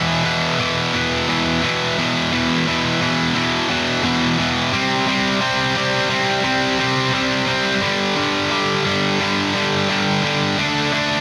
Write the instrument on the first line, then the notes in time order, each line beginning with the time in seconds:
distorted electric guitar
Already playing: E2 B2 E3
0.24 E2 B2 E3
0.59 E2 B2 E3
0.94 E2 B2 E3
1.28 E2 B2 E3
1.62 E2 B2 E3
1.98 E2 B2 E3
2.32 E2 B2 E3
2.67 E2 B2 E3
3.01 E2 B2 E3
3.35 E2 B2 E3
3.69 E2 B2 E3
4.03 E2 B2 E3
4.39 E2 B2 E3
4.73 C3 G3 C4
5.07 C3 G3 C4
5.40 C3 G3 C4
5.76 C3 G3 C4
6.09 C3 G3 C4
6.44 C3 G3 C4
6.78 C3 G3 C4
7.13 C3 G3 C4
7.47 C3 G3 C4
7.81 G2 D3 G3
8.16 G2 D3 G3
8.50 G2 D3 G3
8.85 G2 D3 G3
9.20 G2 D3 G3
9.54 G2 D3 G3
9.89 G2 D3 G3
10.23 G2 D3 G3
10.58 D3 A3 D4
10.92 D3 A3 D4